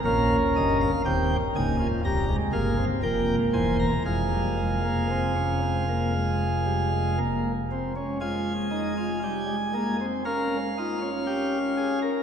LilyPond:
<<
  \new Staff \with { instrumentName = "Pipe organ" } { \time 4/4 \key f \minor \tempo 4 = 59 << { f''8 ees''16 f''16 g''8 aes''8 bes''8 f''8 g''8 aes''16 bes''16 | f''2.~ f''8 r8 | aes''2 f''2 | } \\ { bes'4 g'8 ees'16 f'16 g'8 aes'8 bes'8 c''8 | aes'2.~ aes'8 r8 | f'8 ees'16 f'16 g'8 aes'8 bes'8 f'8 g'8 aes'16 bes'16 | } >> }
  \new Staff \with { instrumentName = "Pipe organ" } { \clef bass \time 4/4 \key f \minor << { des'4 c'8 bes8 g16 aes16 bes16 c'16 bes4 | aes16 g16 aes16 bes16 c'16 des'16 c'16 bes16 aes8 g16 aes16 bes8 c'16 des'16 | aes4 g16 aes16 bes16 c'16 des'8 ees'16 des'4~ des'16 | } \\ { <bes,, bes,>8 <g,, g,>8 <ees,, ees,>8 <des,, des,>8 <c,, c,>8 <g,, g,>8 <f,, f,>8 <e,, e,>8 | <f,, f,>2.~ <f,, f,>8 r8 | r1 | } >> }
>>